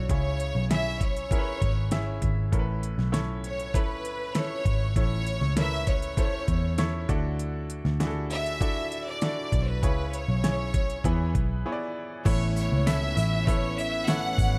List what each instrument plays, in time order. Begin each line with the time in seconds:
Already playing: grand piano D4 E4 F#4 A4 C#5 D5
0.09 picked electric bass C#2, grand piano C#3 C#4 E4 G#4 C#5, violin section C#5, kick, closed hi-hat
0.40 closed hi-hat
0.55 picked electric bass B1
0.71 grand piano C#4 E4 G#4 E5, violin section E5, snare, closed hi-hat
1.01 violin section C#5, kick, closed hi-hat
1.17 closed hi-hat
1.31 grand piano C#4 E4 G#4 A#4, kick, closed hi-hat
1.38 grand piano B4
1.62 picked electric bass G#1, kick, closed hi-hat
1.91 grand piano C#4 E4 G#4 E5, snare, closed hi-hat
2.22 picked electric bass G#1, kick, closed hi-hat
2.52 picked electric bass A1, grand piano A2 C#4 E4 A4 A#4, kick, closed hi-hat
2.59 grand piano B4
2.83 closed hi-hat
2.98 picked electric bass B1, snare
3.12 grand piano C#4 E4 A4 C#5, snare, closed hi-hat
3.44 violin section C#5, closed hi-hat
3.60 closed hi-hat
3.74 grand piano C#4 E4 A4 B4, violin section B4, kick, closed hi-hat
4.05 closed hi-hat
4.35 grand piano C#4 E4 A4 B4, violin section C#5, snare, closed hi-hat
4.65 picked electric bass G#1, kick, closed hi-hat
4.96 picked electric bass A1, grand piano A2 C#4 E4 A4 C#5, violin section C#5, kick, closed hi-hat
5.27 closed hi-hat
5.41 picked electric bass C#2, snare
5.57 grand piano C#4 E4 A4 A#4, violin section E5, snare, closed hi-hat
5.64 grand piano B4
5.87 violin section C#5, kick, closed hi-hat
6.02 closed hi-hat
6.17 grand piano C#4 E4 A4 C5, kick, closed hi-hat
6.25 grand piano C#5
6.48 picked electric bass E2, kick, closed hi-hat
6.78 grand piano C#4 E4 A4 C#5, snare, closed hi-hat
7.09 picked electric bass D2, grand piano D3 D4 E4 F#4 A4, kick, closed hi-hat
7.39 closed hi-hat
7.70 closed hi-hat
7.85 picked electric bass D2, snare
8.00 grand piano D4 E4 F#4 G#4, snare, closed hi-hat
8.07 grand piano A4
8.31 violin section E5, closed hi-hat
8.46 closed hi-hat
8.61 grand piano D4 E4 F#4 A4, kick, closed hi-hat
8.92 closed hi-hat
9.07 violin section D5
9.22 grand piano D4 E4 F#4 A4, snare, closed hi-hat
9.52 picked electric bass B1, kick, closed hi-hat
9.69 violin section B4
9.83 picked electric bass C#2, grand piano C#3 C#4 E4 G#4 C#5, kick, closed hi-hat
10.13 violin section C#5, closed hi-hat
10.28 picked electric bass B1
10.44 grand piano C#4 E4 G#4 C#5, snare, closed hi-hat
10.74 kick, closed hi-hat
10.90 closed hi-hat
11.04 picked electric bass E2, grand piano E3 B3 E4 G#4 B4, kick, closed hi-hat
11.35 picked electric bass B1, kick, closed hi-hat
11.66 grand piano B3 E4 G#4 C#5
11.72 grand piano D5
12.25 picked electric bass A1, clean electric guitar A2 E3 B3 C#4 E4, grand piano A2 C#4 E4 A4 B4 C#5, violin section C#5, kick, open hi-hat, crash, tambourine
12.56 violin section C#5, open hi-hat, tambourine
12.72 picked electric bass C#2
12.86 clean electric guitar A2 E3 B3 C#4 E4, grand piano C#4 E4 A4 B4 E5, violin section E5, snare, open hi-hat, tambourine
13.16 picked electric bass A1, clean electric guitar B3 C#4 E4, open hi-hat, tambourine
13.47 clean electric guitar E3 B3 C#4 E4, grand piano C#4 E4 A4 B4 E5, violin section C#5, kick, open hi-hat
13.77 clean electric guitar B3 C#4 E4, violin section E5, open hi-hat
14.07 clean electric guitar A2 E3 B3 C#4 E4, grand piano C#4 E4 A4 B4 C#5, violin section F#5, snare, open hi-hat, tambourine
14.38 picked electric bass G#1, kick, open hi-hat, tambourine